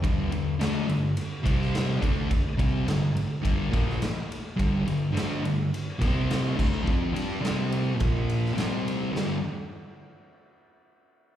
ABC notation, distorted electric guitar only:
X:1
M:4/4
L:1/8
Q:1/4=105
K:C
V:1 name="Distorted electric guitar" clef=bass
[G,,D,G,] [G,,D,] [D,A,D] [G,,D,] z [C,G,C]2 [D,A,D] | z [C,G,C] [G,,D,] z [G,,D,G,] [_B,,F,_B,] z2 | [G,,D,G,] [G,,D,] [D,A,D] [G,,D,] z [C,G,C]2 [D,A,D] | [F,CF] [G,DG] [C,G,C]2 [_B,,F,_B,]2 [C,G,C]2 |
[G,,D,G,] z6 z |]